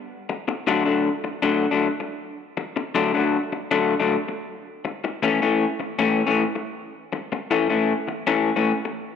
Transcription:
0.29 muted clean electric guitar stroke
0.48 muted clean electric guitar stroke
0.67 clean electric guitar D3 F#3 A3 D4
0.85 clean electric guitar D3 F#3 A3 D4
1.24 muted clean electric guitar stroke
1.42 clean electric guitar D3 F#3 A3 D4
1.71 clean electric guitar D3 F#3 A3 D4
2.00 muted clean electric guitar stroke
2.57 muted clean electric guitar stroke
2.76 muted clean electric guitar stroke
2.95 clean electric guitar D3 F#3 A3 D4
3.14 clean electric guitar D3 F#3 A3 D4
3.53 muted clean electric guitar stroke
3.71 clean electric guitar D3 F#3 A3 D4
4.00 clean electric guitar D3 F#3 A3 D4
4.28 muted clean electric guitar stroke
4.85 muted clean electric guitar stroke
5.04 muted clean electric guitar stroke
5.23 clean electric guitar A2 E3 A3 C#4
5.42 clean electric guitar A2 E3 A3 C#4
5.80 muted clean electric guitar stroke
5.99 clean electric guitar A2 E3 A3 C#4
6.27 clean electric guitar A2 E3 A3 C#4
6.55 muted clean electric guitar stroke
7.13 muted clean electric guitar stroke
7.32 muted clean electric guitar stroke
7.51 clean electric guitar A2 E3 A3 C#4
7.70 clean electric guitar A2 E3 A3 C#4
8.08 muted clean electric guitar stroke
8.27 clean electric guitar A2 E3 A3 C#4
8.56 clean electric guitar A2 E3 A3 C#4
8.85 muted clean electric guitar stroke

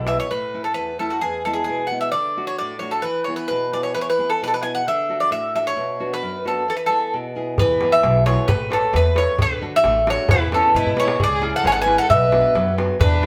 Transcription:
Already playing: upright bass B1, nylon-string guitar B2
0.07 nylon-string guitar E4 G#4 B4, bouzouki E5, darbuka tek
0.18 bouzouki C#5, darbuka tek
0.31 nylon-string guitar A2, bouzouki B4
0.54 nylon-string guitar A3 C#4 E4
0.64 bouzouki A4
0.74 nylon-string guitar E2, bouzouki B4
0.99 nylon-string guitar A3 C#4 E4, bouzouki A4
1.10 bouzouki F#4
1.21 nylon-string guitar E2, bouzouki G#4
1.45 nylon-string guitar G#3 B3 E4, bouzouki A4
1.53 bouzouki G#4
1.64 bouzouki G#4
1.69 nylon-string guitar B2
1.87 bouzouki F#5
1.91 nylon-string guitar G#3 B3 E4
2.01 bouzouki E5
2.12 nylon-string guitar D3, bouzouki D5
2.37 nylon-string guitar A3 D4 F#4
2.47 bouzouki C#5
2.59 nylon-string guitar A2, bouzouki D5
2.79 nylon-string guitar A3 D4 F#4, bouzouki C#5
2.91 bouzouki A4
3.02 nylon-string guitar E3, bouzouki B4
3.24 nylon-string guitar B3, bouzouki C#5
3.29 nylon-string guitar E4 G#4
3.36 bouzouki B4
3.48 nylon-string guitar B2, bouzouki B4
3.73 nylon-string guitar B3 E4 G#4, bouzouki D5
3.83 bouzouki C#5
3.94 nylon-string guitar E3, bouzouki B4
4.01 bouzouki C#5
4.10 bouzouki B4
4.18 nylon-string guitar B3 E4 G#4
4.30 bouzouki A4
4.42 nylon-string guitar B2, bouzouki B4
4.47 bouzouki A4
4.54 bouzouki B4
4.62 nylon-string guitar B3 E4 G#4, bouzouki G#5
4.75 bouzouki F#5
4.87 nylon-string guitar D3, bouzouki E5
5.09 nylon-string guitar D4 F#4 A4
5.20 bouzouki D5
5.30 nylon-string guitar A2, bouzouki E5
5.55 nylon-string guitar D4 F#4 A4, bouzouki E5
5.67 bouzouki C#5
5.77 nylon-string guitar B2
6.00 nylon-string guitar B3 D4 F#4
6.14 bouzouki B4
6.22 nylon-string guitar F#2
6.45 nylon-string guitar B3 D4 F#4, bouzouki A4
6.68 nylon-string guitar E3, bouzouki A4
6.77 bouzouki B4
6.86 nylon-string guitar B3 E4, bouzouki A4
6.90 nylon-string guitar G#4
7.13 nylon-string guitar B2
7.35 nylon-string guitar B3 E4 G#4
7.58 upright bass E2, nylon-string guitar E3, bouzouki B4, darbuka dum
7.81 nylon-string guitar B3 E4 G#4, darbuka tek
7.92 bouzouki E5
8.03 upright bass B1, nylon-string guitar B2, darbuka tek
8.15 darbuka tek
8.26 nylon-string guitar B3 E4 G#4, bouzouki C#5, darbuka tek
8.48 upright bass A1, nylon-string guitar A3, bouzouki B4, darbuka dum
8.70 nylon-string guitar A4 B4 C#5, bouzouki A4, darbuka tek
8.93 upright bass E2, nylon-string guitar E3, bouzouki B4, darbuka tek
9.05 darbuka tek
9.15 nylon-string guitar A4 B4 C#5, bouzouki C#5, darbuka tek
9.38 upright bass D2, nylon-string guitar D3, bouzouki B4, darbuka dum
9.61 nylon-string guitar D4 F#4 A4
9.76 bouzouki E5
9.84 upright bass A1, nylon-string guitar A3, darbuka tek
9.95 darbuka tek
10.07 nylon-string guitar D4 F#4 A4, bouzouki C#5, darbuka tek
10.28 upright bass E2, nylon-string guitar E3, violin E4, bouzouki B4, darbuka dum
10.52 nylon-string guitar B3 E4 G#4, violin C#4, bouzouki A4, darbuka tek
10.64 darbuka tek
10.75 upright bass G#2, nylon-string guitar B2, violin E4, bouzouki B4, darbuka dum
10.87 darbuka dum
10.97 nylon-string guitar B3 E4 G#4, violin E4, bouzouki C#5, darbuka tek
11.08 darbuka tek
11.20 upright bass C#2, nylon-string guitar C#3, violin G#4, bouzouki D5, darbuka dum
11.41 nylon-string guitar C#4 E4 G#4, darbuka tek
11.56 violin A4, bouzouki F#5
11.63 upright bass G#1, nylon-string guitar G#3, violin C#5, darbuka tek
11.67 bouzouki G#5
11.72 violin A4, bouzouki F#5
11.76 darbuka tek
11.82 nylon-string guitar C#4, violin B4, bouzouki G#5
11.86 nylon-string guitar E4 G#4, darbuka tek
11.98 violin A4, bouzouki F#5
12.09 upright bass B1, nylon-string guitar B2, bouzouki E5, darbuka dum
12.13 violin B4
12.32 nylon-string guitar B3 D4 F#4, darbuka tek
12.55 upright bass F#2, nylon-string guitar F#3, darbuka tek
12.67 darbuka tek
12.78 nylon-string guitar B3 D4 F#4, darbuka tek
12.99 upright bass E2, nylon-string guitar E3, violin D4, bouzouki B4, darbuka dum
13.22 nylon-string guitar D4 E4 G#4

